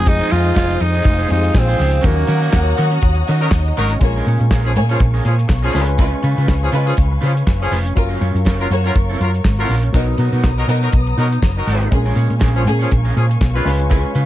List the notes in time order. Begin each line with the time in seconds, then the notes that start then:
Already playing: F1 F3 G#3 C4 D#4 G#4 C5 D#5 G#5 D#6
0.06 D#4, muted clean electric guitar stroke, kick, closed hi-hat
0.20 D#4 G#4 C5, closed hi-hat
0.30 F2 D#4 F4 G#4 D#5, closed hi-hat
0.45 muted clean electric guitar stroke, closed hi-hat
0.55 F1 D#4 F4 G#4 C5, kick, snare, clap
0.70 muted clean electric guitar stroke, closed hi-hat
0.80 F2 D#4, muted clean electric guitar stroke, closed hi-hat
0.94 D#4 G#4 D#5, closed hi-hat
1.04 F1 F4 F5, muted clean electric guitar stroke, kick, closed hi-hat
1.18 D#4 G#4 C5, closed hi-hat
1.29 F2 F3 G#3 C4 D#4 G4, muted clean electric guitar stroke, closed hi-hat
1.37 G#4
1.44 muted clean electric guitar stroke, closed hi-hat
1.54 A#1 C4, muted clean electric guitar stroke, kick, snare, clap
1.68 D#4 G#4 C5
1.77 C#2 D#4 G#4 C5, snare, open hi-hat
1.92 muted clean electric guitar stroke, closed hi-hat
2.01 D#2 F3 A#3 C#4 D#4 F#4 A#4 F#5 A#5 D#6, kick, closed hi-hat
2.06 F#3 A#3 A#4 C#5
2.16 muted clean electric guitar stroke, closed hi-hat
2.27 D#3 C#4 F#4 A#4, closed hi-hat
2.41 C#4 F#4 A#4, closed hi-hat
2.53 D#2, kick, snare, clap
2.66 muted clean electric guitar stroke, closed hi-hat
2.77 D#3 C#4 F#4 A#4, closed hi-hat
2.91 muted clean electric guitar stroke, closed hi-hat
3.02 D#2, kick, closed hi-hat
3.15 muted clean electric guitar stroke, closed hi-hat
3.27 D#3 C#4 D#4 F#4 A#4 D#5, closed hi-hat
3.41 F#3 D#4 A#4, muted clean electric guitar stroke, closed hi-hat
3.51 D#2, kick, snare, clap
3.66 muted clean electric guitar stroke, closed hi-hat
3.77 G#1 F#3 C#4 D#4 F#4 A#4, open hi-hat
3.90 muted clean electric guitar stroke, closed hi-hat
3.99 A#1 G#3 A#3 C#4 F4 G#4 A#4 C#5 F5 G#5 C#6, muted clean electric guitar stroke, kick, closed hi-hat
4.16 C#4 G#4 A#4
4.25 A#2 C#4 G#4 C#5, closed hi-hat
4.40 A#2, muted clean electric guitar stroke, closed hi-hat
4.51 A#1 C#4 G#4 A#4, kick, snare, clap
4.64 F3 C#4 G#4, muted clean electric guitar stroke, closed hi-hat
4.75 A#2 A#3 G#4 C#5, muted clean electric guitar stroke, closed hi-hat
4.89 F3 C#4 G#4 C#5, closed hi-hat
4.99 A#1, muted clean electric guitar stroke, kick, closed hi-hat
5.14 C#4 G#4 A#4
5.25 A#2 F3 C#4 G#4, muted clean electric guitar stroke, closed hi-hat
5.38 muted clean electric guitar stroke, closed hi-hat
5.48 B1, muted clean electric guitar stroke, kick, snare, clap
5.62 F3 C#4 G#4 A#4, closed hi-hat
5.74 C#2 G#3 C#4 F4 A#4 B4, snare, open hi-hat
5.83 B4
5.88 muted clean electric guitar stroke, closed hi-hat
5.98 G#3 C#4 F4 B4, kick, closed hi-hat
6.13 muted clean electric guitar stroke
6.23 C#3 C#4 F4 B4, closed hi-hat
6.37 C#3 C#4 F4 B4, closed hi-hat
6.48 C#2, kick, snare, clap
6.63 F3 C#4 G#4, muted clean electric guitar stroke
6.72 C#3 G#3 C#4 F4 B4, closed hi-hat
6.86 F3 C#4 G#4, muted clean electric guitar stroke, closed hi-hat
6.97 C#2, kick, closed hi-hat
7.12 muted clean electric guitar stroke
7.21 C#3 F3 C#4 F4 G#4 B4, closed hi-hat
7.35 muted clean electric guitar stroke, closed hi-hat
7.47 F#1, kick, snare, clap
7.60 F3 C#4 G#4, muted clean electric guitar stroke
7.71 F1 C#4 F4 B4, open hi-hat
7.85 muted clean electric guitar stroke, closed hi-hat
7.95 F#1 F#3 C#4 F4 A#4 C#5 C#6, muted clean electric guitar stroke, kick, closed hi-hat
8.09 C#4 F4 A#4
8.21 F#2 C#4 F4 C#5, closed hi-hat
8.35 F#2, muted clean electric guitar stroke, closed hi-hat
8.45 F#1 C#4 F4 A#4, kick, snare, clap
8.60 F#3 F4 A#4, muted clean electric guitar stroke, closed hi-hat
8.70 F#2 A#3 F#4 C#5, muted clean electric guitar stroke, closed hi-hat
8.84 F#3 C#4 F4 A#4 C#5, closed hi-hat
8.95 F#1, muted clean electric guitar stroke, kick, closed hi-hat
9.10 C#4 F4 A#4
9.21 F#2 F#3 F4 A#4, muted clean electric guitar stroke, closed hi-hat
9.34 muted clean electric guitar stroke, closed hi-hat
9.45 G#1, muted clean electric guitar stroke, kick, snare, clap
9.59 F#3 C#4 F4 A#4, closed hi-hat
9.69 A#1 C#4 F4 A#4, open hi-hat
9.83 muted clean electric guitar stroke, closed hi-hat
9.92 B1 F#3 B3 D#4 F#4 A#4 A#5 D#6, kick, closed hi-hat
10.07 muted clean electric guitar stroke
10.17 B2 D#4 F#4 A#4, closed hi-hat
10.32 B2 D#4 F#4 A#4, closed hi-hat
10.44 B1, kick, snare, clap
10.58 F#3 D#4 A#4, muted clean electric guitar stroke, closed hi-hat
10.68 B2 D#4 F#4 A#4, closed hi-hat
10.82 F#3 D#4 A#4, muted clean electric guitar stroke, closed hi-hat
10.92 B1, kick, closed hi-hat
11.07 muted clean electric guitar stroke, closed hi-hat
11.18 B2 F#3 D#4 F#4 A#4, closed hi-hat
11.32 muted clean electric guitar stroke, closed hi-hat
11.42 F#1, kick, snare, clap
11.57 F#3 D#4 A#4, muted clean electric guitar stroke
11.67 G#1 D#4 F#4 A#4, snare, open hi-hat
11.81 muted clean electric guitar stroke, closed hi-hat
11.91 A#1 G#3 C#4 F4 G#4 A#4 F5 G#5 C#6, muted clean electric guitar stroke, kick, closed hi-hat
12.06 C#4 G#4 A#4
12.15 A#2 C#4 G#4 C#5, closed hi-hat
12.29 A#2, muted clean electric guitar stroke, closed hi-hat
12.40 A#1 C#4 G#4 A#4, kick, snare, clap
12.55 F3 C#4 G#4, muted clean electric guitar stroke, closed hi-hat
12.65 A#2 C#4 G#4, muted clean electric guitar stroke, closed hi-hat
12.79 F3 C#4 G#4 C#5, closed hi-hat
12.91 A#1, muted clean electric guitar stroke, kick, closed hi-hat
13.05 C#4 G#4 A#4, closed hi-hat
13.16 A#2 F3 C#4 G#4, muted clean electric guitar stroke, closed hi-hat
13.29 muted clean electric guitar stroke, closed hi-hat
13.41 B1, muted clean electric guitar stroke, kick, snare, clap
13.54 G#3 C#4 F4 G#4 A#4 B4
13.65 C#2 G#3 C#4 F4 B4, open hi-hat
13.79 muted clean electric guitar stroke, closed hi-hat
13.90 C#4 F4 G#4 B4, kick, closed hi-hat
14.05 muted clean electric guitar stroke
14.15 C#3 C#4 F4 B4, closed hi-hat